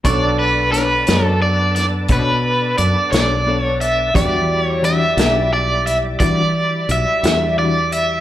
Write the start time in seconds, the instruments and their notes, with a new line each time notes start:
0.04 fretless electric bass B1, clean electric guitar B3 D4 A4 C#5, tonewheel organ B3 D4 A4 D5, grand piano D4 A4 C#6, overdriven electric guitar D5, kick, closed hi-hat
0.39 overdriven electric guitar B4
0.72 clean electric guitar B3 D4 A4 C#5, overdriven electric guitar B4, snare, closed hi-hat
1.07 fretless electric bass F#2, clean electric guitar D4 A4 C#5, snare, closed hi-hat
1.25 overdriven electric guitar A4
1.42 overdriven electric guitar D5
1.76 overdriven electric guitar D5, snare, closed hi-hat
2.08 fretless electric bass B2, clean electric guitar B3 D4 A4 C#5, kick, closed hi-hat
2.12 overdriven electric guitar B4
2.78 fretless electric bass F#2, overdriven electric guitar D5, closed hi-hat
3.12 fretless electric bass B1, clean electric guitar D4 A4 C#5, overdriven electric guitar D5, snare, closed hi-hat
3.47 clean electric guitar B3 D4 A4 C#5
3.62 overdriven electric guitar C#5
3.81 overdriven electric guitar E5, closed hi-hat
4.14 fretless electric bass E2, clean electric guitar E3 G3 D4 F#4, tonewheel organ G3 E4 D5, grand piano F#4 G4 D5, overdriven electric guitar D5, kick, closed hi-hat
4.65 overdriven electric guitar C#5
4.82 clean electric guitar E3 G3 D4 F#4, overdriven electric guitar E5, closed hi-hat
5.17 fretless electric bass B1, clean electric guitar G3 D4 F#4, snare, closed hi-hat
5.53 overdriven electric guitar D5
5.87 overdriven electric guitar E5, closed hi-hat
6.20 clean electric guitar E3 G3 D4 F#4, fretless electric bass E3, overdriven electric guitar D5, kick, closed hi-hat
6.89 fretless electric bass B1, overdriven electric guitar E5, closed hi-hat
7.23 fretless electric bass E2, clean electric guitar G3 D4 F#4, snare, closed hi-hat
7.57 clean electric guitar E3 G3 D4 F#4, overdriven electric guitar D5
7.92 overdriven electric guitar E5, closed hi-hat